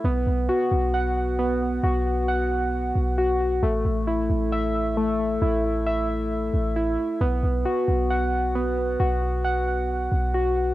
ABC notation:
X:1
M:4/4
L:1/8
Q:1/4=134
K:Amix
V:1 name="Synth keys"
B,2 F2 f2 B,2 | F2 f4 F2 | A,2 E2 e2 A,2 | E2 e4 E2 |
B,2 F2 f2 B,2 | F2 f4 F2 |]
V:2 name="808-style bass" clef=bass
B,,, B,,, z B,,,4- B,,, | B,,,4- B,,, B,,,3 | A,,, A,,,2 A,,,4- A,,, | A,,,4- A,,, A,,,2 z |
B,,, B,,, z B,,,4- B,,, | B,,,4- B,,, B,,,3 |]